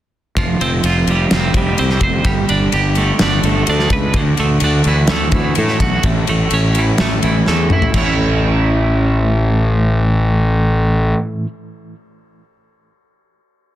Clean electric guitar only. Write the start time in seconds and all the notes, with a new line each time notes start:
0.38 F3
0.61 C4
0.85 F4
1.10 G3
1.33 C4
1.57 G3
1.79 C4
2.03 C5
2.26 G3
2.50 D4
2.74 G4
2.98 A3
3.22 D4
3.45 A3
3.69 D4
3.93 B4
4.16 D3
4.40 A3
4.64 D4
4.88 E3
5.11 A3
5.34 E3
5.58 A3
5.82 F#4
6.05 A2
6.29 A3
6.54 C#4
6.78 E3
7.00 A3
7.24 E3
7.48 A3
7.73 E4
7.94 A2 E3 A3 C#4
7.98 E4